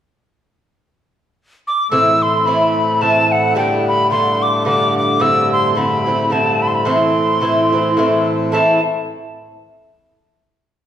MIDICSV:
0, 0, Header, 1, 4, 480
1, 0, Start_track
1, 0, Key_signature, 0, "minor"
1, 0, Tempo, 549451
1, 234, Time_signature, 3, 2, 24, 8
1, 5514, Tempo, 555556
1, 9447, End_track
2, 0, Start_track
2, 0, Title_t, "Tin whistle"
2, 0, Program_c, 0, 75
2, 1463, Note_on_c, 0, 86, 77
2, 1659, Note_off_c, 0, 86, 0
2, 1669, Note_on_c, 0, 88, 89
2, 1942, Note_on_c, 0, 84, 79
2, 1955, Note_off_c, 0, 88, 0
2, 2146, Note_on_c, 0, 83, 74
2, 2159, Note_off_c, 0, 84, 0
2, 2634, Note_on_c, 0, 81, 87
2, 2647, Note_off_c, 0, 83, 0
2, 2899, Note_on_c, 0, 78, 73
2, 2912, Note_off_c, 0, 81, 0
2, 3111, Note_off_c, 0, 78, 0
2, 3121, Note_on_c, 0, 79, 67
2, 3364, Note_off_c, 0, 79, 0
2, 3388, Note_on_c, 0, 83, 88
2, 3581, Note_off_c, 0, 83, 0
2, 3593, Note_on_c, 0, 84, 83
2, 3866, Note_on_c, 0, 86, 81
2, 3879, Note_off_c, 0, 84, 0
2, 4074, Note_off_c, 0, 86, 0
2, 4081, Note_on_c, 0, 86, 88
2, 4324, Note_off_c, 0, 86, 0
2, 4350, Note_on_c, 0, 86, 76
2, 4555, Note_on_c, 0, 88, 96
2, 4569, Note_off_c, 0, 86, 0
2, 4820, Note_off_c, 0, 88, 0
2, 4828, Note_on_c, 0, 84, 85
2, 4974, Note_off_c, 0, 84, 0
2, 4974, Note_on_c, 0, 84, 57
2, 5041, Note_on_c, 0, 83, 74
2, 5054, Note_off_c, 0, 84, 0
2, 5521, Note_on_c, 0, 81, 69
2, 5534, Note_off_c, 0, 83, 0
2, 5781, Note_on_c, 0, 83, 71
2, 5794, Note_off_c, 0, 81, 0
2, 5827, Note_on_c, 0, 84, 54
2, 5840, Note_off_c, 0, 83, 0
2, 5887, Note_on_c, 0, 83, 69
2, 5900, Note_off_c, 0, 84, 0
2, 5985, Note_on_c, 0, 84, 73
2, 5998, Note_off_c, 0, 83, 0
2, 7210, Note_off_c, 0, 84, 0
2, 7425, Note_on_c, 0, 81, 59
2, 7673, Note_off_c, 0, 81, 0
2, 9447, End_track
3, 0, Start_track
3, 0, Title_t, "Bouzouki"
3, 0, Program_c, 1, 25
3, 1674, Note_on_c, 1, 45, 72
3, 1674, Note_on_c, 1, 52, 67
3, 1679, Note_on_c, 1, 60, 79
3, 1686, Note_on_c, 1, 64, 68
3, 2136, Note_off_c, 1, 45, 0
3, 2146, Note_on_c, 1, 45, 48
3, 2148, Note_off_c, 1, 52, 0
3, 2150, Note_off_c, 1, 60, 0
3, 2159, Note_off_c, 1, 64, 0
3, 2159, Note_on_c, 1, 52, 49
3, 2161, Note_on_c, 1, 60, 60
3, 2169, Note_on_c, 1, 64, 60
3, 2618, Note_off_c, 1, 45, 0
3, 2623, Note_off_c, 1, 52, 0
3, 2629, Note_off_c, 1, 60, 0
3, 2629, Note_on_c, 1, 45, 59
3, 2633, Note_on_c, 1, 52, 59
3, 2637, Note_off_c, 1, 64, 0
3, 2639, Note_on_c, 1, 60, 58
3, 2647, Note_on_c, 1, 64, 61
3, 3098, Note_off_c, 1, 45, 0
3, 3102, Note_on_c, 1, 43, 64
3, 3105, Note_off_c, 1, 52, 0
3, 3108, Note_off_c, 1, 60, 0
3, 3109, Note_on_c, 1, 50, 67
3, 3112, Note_on_c, 1, 59, 69
3, 3113, Note_off_c, 1, 64, 0
3, 3117, Note_on_c, 1, 62, 75
3, 3570, Note_off_c, 1, 43, 0
3, 3581, Note_on_c, 1, 43, 52
3, 3586, Note_off_c, 1, 50, 0
3, 3587, Note_off_c, 1, 59, 0
3, 3589, Note_on_c, 1, 50, 55
3, 3598, Note_on_c, 1, 59, 53
3, 3599, Note_off_c, 1, 62, 0
3, 3603, Note_on_c, 1, 62, 63
3, 4052, Note_off_c, 1, 43, 0
3, 4062, Note_off_c, 1, 59, 0
3, 4062, Note_on_c, 1, 43, 62
3, 4064, Note_off_c, 1, 50, 0
3, 4067, Note_on_c, 1, 50, 58
3, 4073, Note_on_c, 1, 59, 60
3, 4078, Note_off_c, 1, 62, 0
3, 4082, Note_on_c, 1, 62, 61
3, 4529, Note_off_c, 1, 43, 0
3, 4534, Note_off_c, 1, 50, 0
3, 4539, Note_on_c, 1, 43, 67
3, 4545, Note_on_c, 1, 50, 67
3, 4547, Note_off_c, 1, 59, 0
3, 4549, Note_off_c, 1, 62, 0
3, 4550, Note_on_c, 1, 60, 67
3, 4552, Note_on_c, 1, 64, 74
3, 5015, Note_off_c, 1, 43, 0
3, 5025, Note_on_c, 1, 43, 57
3, 5026, Note_off_c, 1, 50, 0
3, 5037, Note_on_c, 1, 50, 58
3, 5038, Note_off_c, 1, 60, 0
3, 5041, Note_on_c, 1, 60, 57
3, 5042, Note_off_c, 1, 64, 0
3, 5046, Note_on_c, 1, 64, 63
3, 5283, Note_off_c, 1, 64, 0
3, 5293, Note_off_c, 1, 60, 0
3, 5294, Note_on_c, 1, 64, 45
3, 5296, Note_off_c, 1, 43, 0
3, 5301, Note_off_c, 1, 50, 0
3, 5303, Note_on_c, 1, 60, 43
3, 5314, Note_on_c, 1, 50, 41
3, 5500, Note_off_c, 1, 50, 0
3, 5503, Note_on_c, 1, 43, 49
3, 5508, Note_off_c, 1, 60, 0
3, 5510, Note_off_c, 1, 64, 0
3, 5511, Note_on_c, 1, 50, 55
3, 5519, Note_on_c, 1, 60, 62
3, 5525, Note_on_c, 1, 64, 62
3, 5977, Note_off_c, 1, 43, 0
3, 5981, Note_on_c, 1, 45, 63
3, 5985, Note_off_c, 1, 50, 0
3, 5987, Note_off_c, 1, 60, 0
3, 5988, Note_on_c, 1, 52, 62
3, 5991, Note_on_c, 1, 60, 75
3, 5992, Note_off_c, 1, 64, 0
3, 5996, Note_on_c, 1, 64, 71
3, 6447, Note_off_c, 1, 45, 0
3, 6457, Note_on_c, 1, 45, 56
3, 6459, Note_off_c, 1, 52, 0
3, 6463, Note_on_c, 1, 52, 57
3, 6466, Note_off_c, 1, 60, 0
3, 6469, Note_on_c, 1, 60, 59
3, 6474, Note_off_c, 1, 64, 0
3, 6478, Note_on_c, 1, 64, 67
3, 6721, Note_off_c, 1, 64, 0
3, 6728, Note_off_c, 1, 45, 0
3, 6731, Note_off_c, 1, 52, 0
3, 6732, Note_on_c, 1, 64, 47
3, 6734, Note_off_c, 1, 60, 0
3, 6743, Note_on_c, 1, 60, 48
3, 6754, Note_on_c, 1, 52, 39
3, 6942, Note_off_c, 1, 52, 0
3, 6945, Note_off_c, 1, 64, 0
3, 6945, Note_on_c, 1, 45, 73
3, 6951, Note_off_c, 1, 60, 0
3, 6952, Note_on_c, 1, 52, 65
3, 6960, Note_on_c, 1, 60, 78
3, 6963, Note_on_c, 1, 64, 71
3, 7411, Note_off_c, 1, 45, 0
3, 7421, Note_on_c, 1, 45, 73
3, 7427, Note_off_c, 1, 52, 0
3, 7430, Note_on_c, 1, 52, 68
3, 7434, Note_off_c, 1, 60, 0
3, 7437, Note_off_c, 1, 64, 0
3, 7437, Note_on_c, 1, 60, 65
3, 7441, Note_on_c, 1, 64, 81
3, 7637, Note_off_c, 1, 45, 0
3, 7641, Note_off_c, 1, 52, 0
3, 7645, Note_off_c, 1, 60, 0
3, 7647, Note_off_c, 1, 64, 0
3, 9447, End_track
4, 0, Start_track
4, 0, Title_t, "Accordion"
4, 0, Program_c, 2, 21
4, 1665, Note_on_c, 2, 45, 47
4, 1666, Note_on_c, 2, 57, 51
4, 7474, Note_off_c, 2, 45, 0
4, 7475, Note_off_c, 2, 57, 0
4, 9447, End_track
0, 0, End_of_file